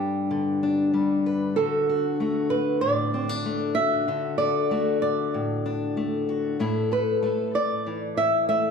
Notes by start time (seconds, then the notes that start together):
Already playing: G2 G3 D4 G4
0.31 D3
0.63 D4
0.94 G3
1.26 B4
1.56 D3 F#4 A4
1.89 F#4
2.20 A3 F#4
2.50 B4
2.81 A2 D5
3.14 C4
3.29 D4
3.46 A3
3.75 F#4 E5
4.08 D3 F#4
4.38 A4 D5
4.71 A3 F#4
5.02 D5
5.34 A2
5.66 D4
5.97 A3
6.29 F#4
6.59 A2 A3 E4 A4
6.92 A4 B4
7.23 A3 A4
7.55 D5
7.87 E3
8.17 E4 E5
8.49 A3 E5